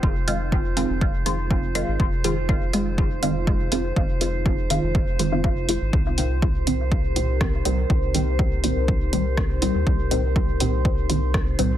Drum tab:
HH |-x-x-x-x|-x-x-x-x|-x-x-x-x|-x-x-x-x|
SD |--------|--------|--------|------r-|
BD |o-o-o-o-|o-o-o-o-|o-o-o-o-|o-o-o-o-|

HH |-x-x-x-x|-x-x-x-x|
SD |------r-|------r-|
BD |o-o-o-o-|o-o-o-o-|